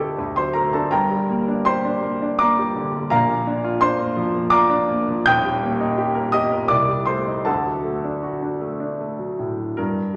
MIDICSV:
0, 0, Header, 1, 2, 480
1, 0, Start_track
1, 0, Tempo, 744417
1, 596, Time_signature, 3, 2, 24, 8
1, 1553, Tempo, 705053
1, 2993, Tempo, 728155
1, 4433, Tempo, 762389
1, 6608, End_track
2, 0, Start_track
2, 0, Title_t, "Grand piano"
2, 0, Program_c, 0, 0
2, 0, Control_c, 0, 64, 127
2, 0, Note_on_c, 0, 38, 58
2, 0, Note_on_c, 0, 55, 48
2, 0, Note_on_c, 0, 57, 54
2, 0, Note_on_c, 0, 62, 54
2, 0, Note_on_c, 0, 67, 50
2, 0, Note_on_c, 0, 69, 51
2, 0, Note_on_c, 0, 74, 52
2, 0, Note_on_c, 0, 75, 69
2, 0, Note_on_c, 0, 81, 55
2, 0, Note_on_c, 0, 86, 69
2, 0, Note_on_c, 0, 87, 98
2, 67, Note_off_c, 0, 67, 0
2, 93, Note_off_c, 0, 38, 0
2, 116, Note_off_c, 0, 69, 0
2, 119, Note_on_c, 0, 38, 52
2, 126, Control_c, 0, 64, 0
2, 127, Note_off_c, 0, 75, 0
2, 130, Note_off_c, 0, 57, 0
2, 130, Note_off_c, 0, 87, 0
2, 131, Note_off_c, 0, 62, 0
2, 132, Note_off_c, 0, 55, 0
2, 212, Note_off_c, 0, 74, 0
2, 213, Note_off_c, 0, 81, 0
2, 233, Note_on_c, 0, 84, 70
2, 234, Note_off_c, 0, 86, 0
2, 238, Control_c, 0, 64, 127
2, 240, Note_on_c, 0, 54, 41
2, 243, Note_on_c, 0, 72, 57
2, 344, Note_on_c, 0, 82, 67
2, 351, Note_off_c, 0, 72, 0
2, 353, Note_on_c, 0, 70, 54
2, 354, Note_off_c, 0, 84, 0
2, 354, Note_on_c, 0, 57, 44
2, 431, Note_off_c, 0, 54, 0
2, 467, Note_off_c, 0, 70, 0
2, 471, Note_off_c, 0, 82, 0
2, 472, Note_on_c, 0, 81, 55
2, 476, Note_on_c, 0, 69, 46
2, 479, Note_on_c, 0, 62, 39
2, 548, Note_off_c, 0, 57, 0
2, 585, Note_off_c, 0, 38, 0
2, 586, Note_on_c, 0, 31, 56
2, 586, Note_on_c, 0, 82, 72
2, 588, Note_off_c, 0, 69, 0
2, 592, Note_on_c, 0, 70, 61
2, 592, Note_on_c, 0, 79, 61
2, 593, Note_on_c, 0, 43, 56
2, 594, Note_off_c, 0, 81, 0
2, 597, Note_off_c, 0, 62, 0
2, 609, Control_c, 0, 64, 0
2, 715, Note_on_c, 0, 55, 45
2, 733, Control_c, 0, 64, 127
2, 834, Note_on_c, 0, 58, 50
2, 909, Note_off_c, 0, 55, 0
2, 954, Note_on_c, 0, 62, 48
2, 1029, Note_off_c, 0, 58, 0
2, 1051, Note_off_c, 0, 70, 0
2, 1051, Note_off_c, 0, 79, 0
2, 1064, Note_on_c, 0, 84, 89
2, 1069, Note_on_c, 0, 67, 55
2, 1072, Note_on_c, 0, 72, 67
2, 1073, Note_off_c, 0, 82, 0
2, 1149, Note_off_c, 0, 62, 0
2, 1193, Note_on_c, 0, 62, 50
2, 1266, Note_off_c, 0, 67, 0
2, 1306, Note_on_c, 0, 58, 50
2, 1386, Note_off_c, 0, 62, 0
2, 1432, Note_on_c, 0, 62, 49
2, 1501, Note_off_c, 0, 58, 0
2, 1525, Note_off_c, 0, 72, 0
2, 1539, Note_on_c, 0, 86, 85
2, 1545, Note_on_c, 0, 58, 48
2, 1547, Note_off_c, 0, 84, 0
2, 1548, Note_on_c, 0, 74, 62
2, 1548, Note_on_c, 0, 82, 64
2, 1626, Note_off_c, 0, 62, 0
2, 1674, Note_on_c, 0, 55, 51
2, 1746, Note_off_c, 0, 58, 0
2, 1792, Note_on_c, 0, 50, 51
2, 1870, Note_off_c, 0, 55, 0
2, 1915, Note_on_c, 0, 55, 47
2, 1989, Note_off_c, 0, 50, 0
2, 2008, Note_off_c, 0, 31, 0
2, 2010, Note_off_c, 0, 74, 0
2, 2010, Note_off_c, 0, 82, 0
2, 2012, Note_off_c, 0, 43, 0
2, 2026, Note_on_c, 0, 82, 81
2, 2027, Note_on_c, 0, 34, 59
2, 2032, Note_off_c, 0, 86, 0
2, 2033, Note_on_c, 0, 77, 69
2, 2034, Note_on_c, 0, 46, 66
2, 2036, Note_on_c, 0, 70, 66
2, 2038, Note_off_c, 0, 55, 0
2, 2054, Control_c, 0, 64, 0
2, 2154, Note_on_c, 0, 58, 51
2, 2155, Control_c, 0, 64, 127
2, 2275, Note_on_c, 0, 62, 57
2, 2347, Note_off_c, 0, 58, 0
2, 2393, Note_on_c, 0, 65, 60
2, 2466, Note_off_c, 0, 62, 0
2, 2484, Note_off_c, 0, 77, 0
2, 2486, Note_off_c, 0, 70, 0
2, 2505, Note_on_c, 0, 84, 97
2, 2508, Note_off_c, 0, 82, 0
2, 2511, Note_on_c, 0, 72, 71
2, 2512, Note_on_c, 0, 62, 63
2, 2584, Note_off_c, 0, 65, 0
2, 2629, Note_on_c, 0, 58, 57
2, 2704, Note_off_c, 0, 62, 0
2, 2749, Note_on_c, 0, 53, 56
2, 2823, Note_off_c, 0, 58, 0
2, 2868, Note_on_c, 0, 58, 51
2, 2944, Note_off_c, 0, 53, 0
2, 2965, Note_off_c, 0, 72, 0
2, 2978, Note_on_c, 0, 86, 97
2, 2987, Note_on_c, 0, 65, 62
2, 2988, Note_on_c, 0, 82, 76
2, 2989, Note_off_c, 0, 84, 0
2, 2989, Note_on_c, 0, 74, 73
2, 3063, Note_off_c, 0, 58, 0
2, 3108, Note_on_c, 0, 62, 65
2, 3185, Note_off_c, 0, 65, 0
2, 3232, Note_on_c, 0, 58, 58
2, 3311, Note_off_c, 0, 62, 0
2, 3361, Note_on_c, 0, 53, 50
2, 3436, Note_off_c, 0, 58, 0
2, 3455, Note_off_c, 0, 34, 0
2, 3459, Note_off_c, 0, 46, 0
2, 3459, Note_off_c, 0, 74, 0
2, 3459, Note_off_c, 0, 82, 0
2, 3475, Note_on_c, 0, 27, 76
2, 3476, Note_on_c, 0, 91, 116
2, 3480, Note_off_c, 0, 86, 0
2, 3484, Note_on_c, 0, 87, 79
2, 3485, Note_on_c, 0, 39, 69
2, 3486, Note_off_c, 0, 53, 0
2, 3487, Note_on_c, 0, 79, 85
2, 3498, Control_c, 0, 64, 0
2, 3604, Note_on_c, 0, 55, 58
2, 3625, Control_c, 0, 64, 127
2, 3721, Note_on_c, 0, 58, 57
2, 3793, Note_off_c, 0, 55, 0
2, 3836, Note_on_c, 0, 63, 60
2, 3909, Note_off_c, 0, 58, 0
2, 3951, Note_on_c, 0, 67, 60
2, 4026, Note_off_c, 0, 63, 0
2, 4064, Note_on_c, 0, 70, 55
2, 4143, Note_off_c, 0, 67, 0
2, 4166, Note_off_c, 0, 87, 0
2, 4167, Note_off_c, 0, 79, 0
2, 4178, Note_on_c, 0, 87, 100
2, 4186, Note_on_c, 0, 75, 74
2, 4188, Note_off_c, 0, 91, 0
2, 4188, Note_on_c, 0, 67, 62
2, 4260, Note_off_c, 0, 70, 0
2, 4308, Note_on_c, 0, 70, 56
2, 4383, Note_off_c, 0, 67, 0
2, 4401, Note_off_c, 0, 27, 0
2, 4406, Note_off_c, 0, 39, 0
2, 4413, Note_off_c, 0, 75, 0
2, 4416, Note_on_c, 0, 86, 84
2, 4423, Note_on_c, 0, 74, 68
2, 4425, Note_on_c, 0, 36, 60
2, 4426, Note_off_c, 0, 87, 0
2, 4431, Note_off_c, 0, 70, 0
2, 4447, Control_c, 0, 64, 0
2, 4544, Control_c, 0, 64, 127
2, 4544, Note_on_c, 0, 55, 45
2, 4646, Note_off_c, 0, 74, 0
2, 4652, Note_on_c, 0, 84, 75
2, 4659, Note_on_c, 0, 57, 47
2, 4660, Note_off_c, 0, 86, 0
2, 4660, Note_on_c, 0, 72, 52
2, 4736, Note_off_c, 0, 55, 0
2, 4787, Note_on_c, 0, 63, 44
2, 4855, Note_off_c, 0, 57, 0
2, 4887, Note_off_c, 0, 72, 0
2, 4890, Note_off_c, 0, 36, 0
2, 4898, Note_on_c, 0, 81, 61
2, 4900, Note_off_c, 0, 84, 0
2, 4902, Note_on_c, 0, 69, 53
2, 4906, Note_on_c, 0, 38, 50
2, 4906, Note_on_c, 0, 78, 45
2, 4908, Note_off_c, 0, 63, 0
2, 4920, Control_c, 0, 64, 0
2, 5029, Note_on_c, 0, 54, 38
2, 5034, Control_c, 0, 64, 127
2, 5149, Note_on_c, 0, 57, 41
2, 5226, Note_off_c, 0, 54, 0
2, 5273, Note_on_c, 0, 62, 40
2, 5348, Note_off_c, 0, 57, 0
2, 5391, Note_on_c, 0, 66, 42
2, 5471, Note_off_c, 0, 62, 0
2, 5513, Note_on_c, 0, 62, 40
2, 5590, Note_off_c, 0, 66, 0
2, 5632, Note_on_c, 0, 57, 40
2, 5710, Note_off_c, 0, 62, 0
2, 5750, Note_on_c, 0, 62, 41
2, 5829, Note_off_c, 0, 57, 0
2, 5879, Note_on_c, 0, 57, 38
2, 5949, Note_off_c, 0, 62, 0
2, 5993, Note_on_c, 0, 54, 38
2, 6075, Note_off_c, 0, 57, 0
2, 6097, Note_off_c, 0, 69, 0
2, 6099, Note_off_c, 0, 78, 0
2, 6120, Note_off_c, 0, 81, 0
2, 6121, Note_on_c, 0, 45, 34
2, 6194, Note_off_c, 0, 54, 0
2, 6245, Note_on_c, 0, 54, 32
2, 6316, Note_off_c, 0, 45, 0
2, 6338, Note_off_c, 0, 38, 0
2, 6360, Note_on_c, 0, 70, 65
2, 6364, Note_off_c, 0, 54, 0
2, 6368, Note_on_c, 0, 43, 50
2, 6378, Control_c, 0, 64, 0
2, 6484, Control_c, 0, 64, 127
2, 6591, Note_off_c, 0, 43, 0
2, 6608, Note_off_c, 0, 70, 0
2, 6608, End_track
0, 0, End_of_file